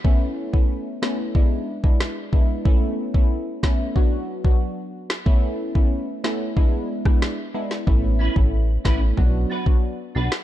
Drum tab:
SD |------o-----o---|------o--------o|------o----ro--o|------o--------o|
BD |o--o----o--o--o-|o--o--o-o--o----|o--o----o--o----|o--o--o-o--o----|